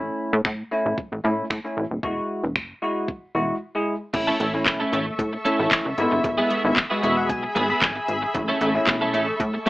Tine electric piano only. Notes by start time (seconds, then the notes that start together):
Already playing: A3 C#4 E4
0.71 A3 C#4 E4
1.24 A3 C#4 E4
1.64 A3 C#4 E4
2.03 G#3 E4 F#4
2.82 G#3 E4 F#4
3.35 G#3 E4 F#4
3.75 G#3 E4 G#4
4.14 A3 C#4 E4
4.54 A3 C#4 E4
5.45 A3 C#4 E4
5.98 G#3 B3 E4
6.64 G#3 B3 E4
6.91 G#3 B3 F#4
7.03 E5
7.17 F#5
7.30 G#5
7.70 B5
7.82 G#5
8.35 A3 C#4 E4
8.75 A3 C#4 E4
9.66 A3